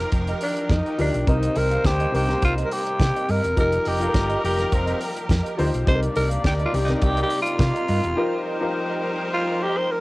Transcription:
Already playing: string section D#3 F3 G4 A#4, grand piano F3 D#4 G4 A#4, tenor saxophone A#4
0.01 muted clean electric guitar stroke
0.12 fingered electric bass F1, muted clean electric guitar stroke, kick, closed hi-hat
0.27 clean electric guitar G4 A#4 D#5, closed hi-hat
0.41 tenor saxophone D4, muted clean electric guitar stroke, open hi-hat
0.57 muted clean electric guitar stroke, closed hi-hat
0.69 fingered electric bass F2, tenor saxophone D#4, kick, snare, closed hi-hat
0.86 clean electric guitar G4 A#4 D#5, closed hi-hat
0.98 fingered electric bass D2, grand piano F3 D#4 G4 A#4, tenor saxophone D4, clean electric guitar G4 A#4 D#5, open hi-hat
1.14 fingered electric bass B1, muted clean electric guitar stroke, closed hi-hat
1.26 fingered electric bass C2, grand piano C3 C4 D#4 A#4, string section C3 G3 A#3, horn section G3 C4 D#4 C5, tenor saxophone D#4, clean electric guitar G4 A#4 D#5, kick, closed hi-hat
1.43 closed hi-hat
1.56 fingered electric bass C2, clean electric guitar G4 A#4 D#5, tenor saxophone A#4, open hi-hat
1.71 clean electric guitar G4 A#4 F5, closed hi-hat
1.84 fingered electric bass D2, tenor saxophone G4, kick, snare, closed hi-hat
2.00 clean electric guitar G4 A#4 D#5, closed hi-hat
2.12 fingered electric bass C2, grand piano C3 C4 D#4 A#4, tenor saxophone G4, muted clean electric guitar stroke, open hi-hat
2.28 grand piano C3 C4 D#4 A#4, muted clean electric guitar stroke, snare, closed hi-hat
2.42 fingered electric bass C2, tenor saxophone F4, kick, closed hi-hat
2.58 clean electric guitar G4 A#4 D#5, closed hi-hat
2.66 tenor saxophone A#4
2.71 tenor saxophone G4, muted clean electric guitar stroke, open hi-hat
2.87 muted clean electric guitar stroke, closed hi-hat
3.00 fingered electric bass C3, muted clean electric guitar stroke, kick, snare, closed hi-hat
3.15 clean electric guitar G4 A#4 D#5, closed hi-hat
3.28 fingered electric bass G2, clean electric guitar G4 A#4 D#5, tenor saxophone A#4, open hi-hat
3.44 fingered electric bass E1, muted clean electric guitar stroke, closed hi-hat
3.56 fingered electric bass F1, grand piano F3 D#4 G4 A#4, string section F3 G4 A#4, horn section G3 A#3 D#4 A#4, clean electric guitar G4 A#4 D#5, tenor saxophone A#4, kick, closed hi-hat
3.72 closed hi-hat
3.85 fingered electric bass F1, clean electric guitar G4 A#4 D#5, tenor saxophone G4, open hi-hat
4.00 grand piano F3 D#4 G4 A4, clean electric guitar G4 A#4 F5, closed hi-hat
4.08 grand piano A#4
4.14 fingered electric bass G1, kick, snare, closed hi-hat
4.29 clean electric guitar G4 A#4 D#5, closed hi-hat
4.42 fingered electric bass F1, tenor saxophone G4, muted clean electric guitar stroke, open hi-hat
4.58 muted clean electric guitar stroke, snare, closed hi-hat
4.71 fingered electric bass F1, tenor saxophone C4, muted clean electric guitar stroke, kick, closed hi-hat
4.86 clean electric guitar G4 A#4 D#5, closed hi-hat
5.01 muted clean electric guitar stroke, open hi-hat
5.16 muted clean electric guitar stroke, closed hi-hat
5.29 fingered electric bass F2, muted clean electric guitar stroke, kick, snare, closed hi-hat
5.43 clean electric guitar G4 A#4 D#5, closed hi-hat
5.57 fingered electric bass D2, grand piano F3 D#4 G4 C5, clean electric guitar G4 A#4 D#5, open hi-hat
5.72 fingered electric bass B1, muted clean electric guitar stroke, closed hi-hat
5.86 fingered electric bass C2, string section C3 G3 A#3 D#4, grand piano C3 C4 D#4 A4, horn section A#3 D4 G4 D5, clean electric guitar G4 A#4 D#5, tenor saxophone C5, kick, closed hi-hat
5.95 grand piano A#4
6.03 closed hi-hat
6.15 fingered electric bass C2, clean electric guitar G4 A#4 D#5, tenor saxophone A#4, open hi-hat
6.29 clean electric guitar G4 A#4 F5, closed hi-hat
6.44 fingered electric bass D2, tenor saxophone G4, muted clean electric guitar stroke, kick, snare, closed hi-hat
6.58 clean electric guitar G4 A#4 D#5, closed hi-hat
6.65 tenor saxophone F4
6.72 fingered electric bass C2, grand piano C3 C4 D#4 G4, muted clean electric guitar stroke, open hi-hat
6.84 grand piano C3, tenor saxophone D#4, closed hi-hat
6.89 grand piano C4 D#4 A#4, snare
7.02 fingered electric bass C2, tenor saxophone G4, kick, closed hi-hat
7.16 clean electric guitar G4 A#4 D#5, closed hi-hat
7.23 tenor saxophone G4
7.30 muted clean electric guitar stroke, open hi-hat
7.42 tenor saxophone F4, muted clean electric guitar stroke, closed hi-hat
7.58 fingered electric bass C3, muted clean electric guitar stroke, kick, snare, closed hi-hat
7.74 clean electric guitar G4 A#4 D#5, closed hi-hat
7.87 fingered electric bass G2, clean electric guitar G4 A#4 D#5, open hi-hat
8.03 fingered electric bass E1, muted clean electric guitar stroke, closed hi-hat
8.16 grand piano F3 D#4 G4 A#4, string section F3 D#4 G4 A#4, horn section G3 C4 D#4 C5, clean electric guitar G4 A#4 D#5
8.45 clean electric guitar G4 A#4 D#5
8.60 grand piano F3 D#4 G4 A#4, clean electric guitar G4 A#4 F5
8.74 muted clean electric guitar stroke
8.90 clean electric guitar G4 A#4 D#5
9.03 muted clean electric guitar stroke
9.18 muted clean electric guitar stroke
9.31 tenor saxophone F4, muted clean electric guitar stroke
9.46 muted clean electric guitar stroke
9.59 clean electric guitar G4 A#4 D#5
9.63 tenor saxophone G4
9.74 tenor saxophone C5, muted clean electric guitar stroke
9.87 muted clean electric guitar stroke
9.92 tenor saxophone A#4

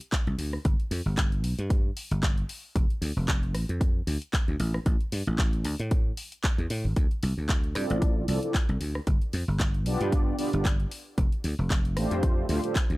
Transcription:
0.01 closed hi-hat
0.12 kick, clap, closed hi-hat
0.27 slap bass C2, closed hi-hat
0.38 slap bass D2, open hi-hat
0.53 cross-stick
0.65 slap bass G1, kick, closed hi-hat
0.80 closed hi-hat
0.91 slap bass F2, open hi-hat
1.06 slap bass G1
1.17 kick, clap, closed hi-hat
1.32 closed hi-hat
1.44 slap bass B1, open hi-hat
1.59 slap bass G2, closed hi-hat
1.70 kick, closed hi-hat
1.97 open hi-hat
2.11 slap bass G1, closed hi-hat
2.23 kick, clap, closed hi-hat
2.38 closed hi-hat
2.49 open hi-hat
2.76 slap bass F1, kick, closed hi-hat
2.90 closed hi-hat
3.02 slap bass D2, open hi-hat
3.16 slap bass F1
3.28 kick, clap, closed hi-hat
3.43 closed hi-hat
3.55 slap bass A1, cross-stick, open hi-hat
3.69 slap bass F2, closed hi-hat
3.81 kick, closed hi-hat
4.07 slap bass D2, open hi-hat
4.22 closed hi-hat
4.33 kick, clap, closed hi-hat
4.48 slap bass D2, closed hi-hat
4.60 slap bass A1, open hi-hat
4.74 cross-stick
4.86 slap bass A1, kick, closed hi-hat
5.01 closed hi-hat
5.12 slap bass G2, open hi-hat
5.27 slap bass A1, closed hi-hat
5.38 kick, clap, closed hi-hat
5.53 closed hi-hat
5.65 slap bass D2, open hi-hat
5.79 slap bass A2, closed hi-hat
5.91 kick, closed hi-hat
6.17 open hi-hat
6.32 closed hi-hat
6.44 kick, clap, closed hi-hat
6.58 slap bass E2, closed hi-hat
6.70 slap bass A2, open hi-hat
6.85 slap bass A1
6.96 slap bass D2, kick, closed hi-hat
7.11 closed hi-hat
7.23 slap bass C2, open hi-hat
7.38 slap bass D2
7.49 kick, clap, closed hi-hat
7.64 closed hi-hat
7.75 slap bass G2, analog polysynth C4 E4 F4 A4 D5, cross-stick, open hi-hat
7.90 slap bass A1, closed hi-hat
8.02 kick, closed hi-hat
8.27 slap bass C2, analog polysynth C4 E4 F4 A4 D5, open hi-hat
8.42 analog polysynth C4 E4 F4 A4 D5, closed hi-hat
8.54 kick, clap, closed hi-hat
8.69 slap bass C2, closed hi-hat
8.81 slap bass D2, open hi-hat
8.95 cross-stick
9.07 slap bass G1, kick, closed hi-hat
9.22 closed hi-hat
9.33 slap bass F2, open hi-hat
9.48 slap bass G1
9.60 kick, clap, closed hi-hat
9.74 closed hi-hat
9.86 slap bass B1, analog polysynth B3 D4 F4 G4 D5, open hi-hat
10.01 slap bass G2, closed hi-hat
10.12 kick, closed hi-hat
10.38 analog polysynth B3 D4 F4 G4 D5, open hi-hat
10.53 slap bass G1, analog polysynth B3 D4 F4 G4 D5, closed hi-hat
10.65 kick, clap, closed hi-hat
10.80 closed hi-hat
10.91 open hi-hat
11.18 slap bass F1, kick, closed hi-hat
11.32 closed hi-hat
11.44 slap bass D2, open hi-hat
11.59 slap bass F1
11.70 kick, clap, closed hi-hat
11.85 closed hi-hat
11.96 slap bass A1, analog polysynth A3 D4 F4 G4 C5, cross-stick, open hi-hat
12.11 slap bass F2, closed hi-hat
12.23 kick, closed hi-hat
12.48 slap bass D2, analog polysynth A3 D4 F4 G4 C5, open hi-hat
12.63 analog polysynth A3 D4 F4 G4 C5, closed hi-hat
12.75 kick, clap, closed hi-hat
12.90 slap bass D2, closed hi-hat

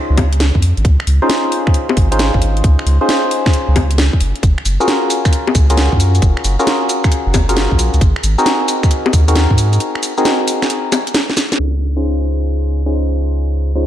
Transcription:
Already playing: synth stab C#4 D#4 F4 G#4 C5
0.10 sub bass C#2
0.18 kick, open hi-hat, high bongo
0.33 closed hi-hat
0.40 snare, closed hi-hat
0.55 sub bass F2, kick
0.62 open hi-hat
0.77 sub bass G#1, closed hi-hat
0.85 sub bass C#2, kick, closed hi-hat
1.00 finger snap
1.07 sub bass C#2, open hi-hat
1.22 synth stab C#4 D#4 F4 G#4 C5
1.30 snare, closed hi-hat
1.52 open hi-hat
1.67 finger snap, kick
1.74 closed hi-hat
1.89 high bongo
1.97 sub bass G#1, kick, open hi-hat
2.12 synth stab C#4 D#4 F4 G#4 C5, closed hi-hat
2.19 snare, closed hi-hat
2.34 sub bass G#1, kick
2.42 open hi-hat
2.57 closed hi-hat
2.64 sub bass C#2, kick, closed hi-hat
2.79 finger snap
2.86 sub bass C#2, open hi-hat
3.01 synth stab C#4 D#4 F4 G#4 C5
3.09 snare, closed hi-hat
3.31 open hi-hat
3.46 finger snap, kick, snare
3.54 closed hi-hat
3.68 sub bass C#2
3.76 kick, open hi-hat, high bongo
3.91 closed hi-hat
3.98 snare, closed hi-hat
4.13 kick
4.20 sub bass F#1, open hi-hat
4.36 closed hi-hat
4.43 sub bass F#1, kick, closed hi-hat, shaker
4.58 finger snap
4.65 sub bass F#1, open hi-hat, shaker
4.80 synth stab C#4 F4 F#4 G#4 A#4, shaker
4.88 snare, closed hi-hat, shaker
5.10 open hi-hat, shaker
5.25 finger snap, kick, shaker
5.33 closed hi-hat, shaker
5.47 high bongo
5.55 sub bass C#2, kick, open hi-hat, shaker
5.70 synth stab C#4 F4 F#4 G#4 A#4, closed hi-hat, shaker
5.77 snare, closed hi-hat, shaker
5.92 sub bass F#2, kick
6.00 open hi-hat, shaker
6.15 closed hi-hat, shaker
6.22 sub bass F#1, kick, closed hi-hat, shaker
6.37 finger snap
6.44 sub bass F#1, open hi-hat, shaker
6.59 synth stab C#4 F4 F#4 G#4 A#4, shaker
6.67 snare, closed hi-hat, shaker
6.89 open hi-hat, shaker
7.04 finger snap, kick, shaker
7.12 closed hi-hat, shaker
7.26 sub bass F#1
7.34 kick, open hi-hat, high bongo, shaker
7.49 synth stab C#4 F4 F#4 G#4 A#4, closed hi-hat, shaker
7.57 snare, closed hi-hat, shaker
7.71 sub bass A#1, kick
7.79 open hi-hat, shaker
7.94 sub bass C#2, closed hi-hat, shaker
8.01 sub bass G#1, kick, closed hi-hat, shaker
8.16 finger snap
8.23 sub bass G#1, open hi-hat, shaker
8.38 synth stab C4 D#4 F#4 G#4 A#4, shaker
8.46 snare, closed hi-hat, shaker
8.68 open hi-hat, shaker
8.83 finger snap, kick, shaker
8.91 closed hi-hat, shaker
9.06 high bongo
9.13 sub bass D#2, kick, open hi-hat, shaker
9.28 synth stab C4 D#4 F#4 G#4 A#4, closed hi-hat, shaker
9.36 snare, closed hi-hat, shaker
9.50 sub bass G#2, kick
9.58 open hi-hat, shaker
9.73 closed hi-hat, shaker
9.80 closed hi-hat, shaker
9.95 finger snap
10.03 open hi-hat, shaker
10.18 synth stab C4 D#4 F#4 G#4 A#4, shaker
10.25 snare, closed hi-hat, shaker
10.48 open hi-hat, shaker
10.62 finger snap, snare, shaker
10.70 closed hi-hat, shaker
10.92 open hi-hat, high bongo, shaker
11.07 closed hi-hat, shaker
11.14 snare, closed hi-hat, shaker
11.30 snare
11.37 snare, open hi-hat, shaker
11.52 snare, closed hi-hat, shaker
11.59 sub bass C#2
11.82 open hi-hat, shaker
11.97 synth stab C#4 D#4 F4 G#4 C5, shaker
12.04 shaker
12.26 open hi-hat, shaker
12.41 shaker
12.49 shaker
12.71 open hi-hat, shaker
12.86 synth stab C#4 D#4 F4 G#4 C5, shaker
12.93 shaker
13.16 open hi-hat, shaker
13.31 shaker
13.38 shaker
13.61 open hi-hat, shaker
13.75 synth stab C#4 D#4 F4 G#4 C5, shaker
13.83 shaker

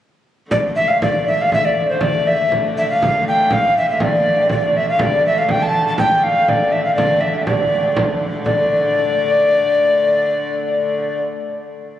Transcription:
0.50 hurdy-gurdy D3 A3, recorder D5, frame drum
0.76 recorder E5
0.88 recorder F5
1.02 recorder D5, frame drum
1.26 recorder E5, frame drum
1.41 recorder F5
1.52 recorder E5, frame drum
1.65 recorder D5
1.89 recorder C5
2.01 recorder D5, frame drum
2.27 recorder E5, frame drum
2.52 frame drum
2.78 recorder E5
2.90 recorder F5
3.02 frame drum
3.26 recorder G5, frame drum
3.50 recorder F5, frame drum
3.75 recorder E5, frame drum
3.90 recorder E5
4.00 recorder D5, frame drum
4.49 hurdy-gurdy D3 A3, recorder D5, frame drum
4.76 recorder E5
4.89 recorder F5
4.99 recorder D5, frame drum
5.25 recorder E5, frame drum
5.38 recorder F5
5.49 recorder G5, frame drum
5.63 recorder A5
5.87 recorder A5
5.98 recorder G5, frame drum
6.18 recorder G5
6.23 recorder F5
6.48 recorder D5, frame drum
6.72 recorder E5
6.85 recorder F5
6.95 recorder D5, frame drum
7.21 recorder E5, frame drum
7.46 recorder D5, frame drum
7.96 frame drum
8.21 frame drum
8.45 hurdy-gurdy D3 A3, recorder D5, frame drum

